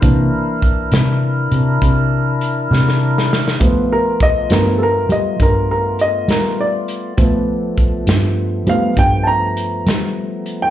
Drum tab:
HH |x---x-x---x-x---x-------|x---x-x---x-x---x-x---x-|x---x-x---x-x---x-x---x-|
SD |------o-----------oo-ooo|------o-----------o-----|------o-----------o-----|
BD |o---o-------o-----------|o---o-------o-----------|o---o-------o-----------|